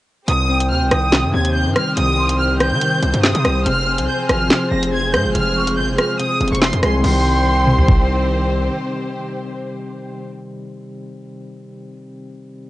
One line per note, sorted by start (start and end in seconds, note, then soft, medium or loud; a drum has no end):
0.28 0.72 C2 loud
0.28 1.11 C3 loud
0.28 3.63 D#3 medium
0.28 7.00 C4 medium
0.28 3.63 G4 medium
0.28 7.00 C5 medium
0.28 0.68 D#6 loud
0.28 closed hi-hat medium
0.49 1.32 C4 medium
0.49 1.51 G5 loud
0.60 closed hi-hat medium
0.70 0.83 D#2 loud
0.70 0.86 F6 medium
0.81 0.91 C2 loud
0.91 1.25 C2 loud
0.91 1.97 D#3 medium
0.91 1.31 D#6 medium
0.91 cross-stick loud
0.91 closed hi-hat medium
1.12 1.96 C3 loud
1.12 snare loud
1.12 clap loud
1.12 closed hi-hat medium
1.24 1.33 G2 loud
1.33 1.67 D#2 loud
1.33 1.53 C4 medium
1.33 1.50 G#6 medium
1.45 closed hi-hat medium
1.55 2.17 C4 medium
1.55 1.70 G6 medium
1.66 1.75 G2 loud
1.76 2.81 G3 medium
1.76 1.92 F6 medium
1.76 cross-stick loud
1.76 closed hi-hat medium
1.97 2.73 C2 loud
1.97 2.80 C3 medium
1.97 2.37 D#6 loud
1.97 closed hi-hat medium
2.18 3.02 C4 medium
2.18 2.38 C6 medium
2.29 closed hi-hat medium
2.39 2.55 F6 medium
2.60 3.66 D#3 medium
2.60 3.20 G6 loud
2.60 cross-stick loud
2.60 closed hi-hat medium
2.71 3.01 D#3 loud
2.81 3.65 C3 medium
2.81 closed hi-hat medium
3.02 3.13 C2 loud
3.02 3.23 C4 medium
3.02 closed hi-hat medium
3.14 3.34 G2 loud
3.14 closed hi-hat medium
3.23 3.66 C4 medium
3.23 3.63 D#6 medium
3.23 snare loud
3.23 clap loud
3.35 3.44 C3 loud
3.35 closed hi-hat medium
3.45 3.65 C2 loud
3.45 3.66 G3 medium
3.45 cross-stick loud
3.45 closed hi-hat medium
3.66 4.00 F1 loud
3.66 4.49 C3 medium
3.66 7.01 F3 medium
3.66 7.01 G#4 medium
3.66 4.06 F6 loud
3.66 closed hi-hat medium
3.87 4.70 C4 medium
3.87 4.89 G#5 medium
3.98 4.08 C2 loud
3.98 closed hi-hat medium
4.08 4.24 G6 medium
4.29 4.50 G#1 loud
4.29 5.35 F3 medium
4.29 4.69 F6 medium
4.29 cross-stick loud
4.29 closed hi-hat medium
4.50 5.34 C3 loud
4.50 snare loud
4.50 clap loud
4.50 closed hi-hat medium
4.71 5.15 F1 loud
4.71 4.92 C4 medium
4.71 4.87 A#6 medium
4.83 closed hi-hat medium
4.93 5.55 C4 medium
4.93 5.09 G#6 loud
5.14 5.26 G#2 loud
5.14 6.19 G#3 medium
5.14 5.30 G6 medium
5.14 cross-stick loud
5.14 closed hi-hat medium
5.25 5.34 F1 loud
5.35 5.79 F1 loud
5.35 6.18 C3 medium
5.35 5.74 F6 loud
5.35 closed hi-hat medium
5.56 6.39 C4 medium
5.56 5.76 C#6 medium
5.67 closed hi-hat medium
5.77 5.90 G#1 loud
5.77 5.93 G6 medium
5.88 5.98 F1 loud
5.98 7.04 F3 medium
5.98 6.14 F6 medium
5.98 cross-stick loud
5.98 closed hi-hat medium
6.19 6.97 C3 medium
6.19 6.50 D#6 loud
6.19 closed hi-hat medium
6.41 6.51 F1 loud
6.41 6.61 C4 medium
6.41 closed hi-hat soft
6.48 closed hi-hat medium
6.52 6.72 F1 loud
6.52 6.59 C#6 medium
6.52 closed hi-hat medium
6.62 7.04 C4 loud
6.62 6.78 C6 loud
6.62 6.82 C6 medium
6.62 snare loud
6.62 clap loud
6.73 6.82 F2 loud
6.73 closed hi-hat medium
6.83 7.03 C2 loud
6.83 7.04 G#3 medium
6.83 7.03 G#5 medium
6.83 6.99 C6 medium
6.83 cross-stick loud
6.83 closed hi-hat medium
6.98 10.16 C3 medium
7.02 8.69 C2 loud
7.02 10.20 D#3 medium
7.02 10.22 D#3 medium
7.02 10.24 G3 medium
7.02 10.22 C4 medium
7.02 10.22 G4 medium
7.02 10.22 C5 medium
7.02 8.27 G5 loud
7.02 8.27 C6 medium
7.02 crash medium
7.10 10.28 C4 medium
7.67 mid tom medium
7.79 floor tom medium
7.88 kick medium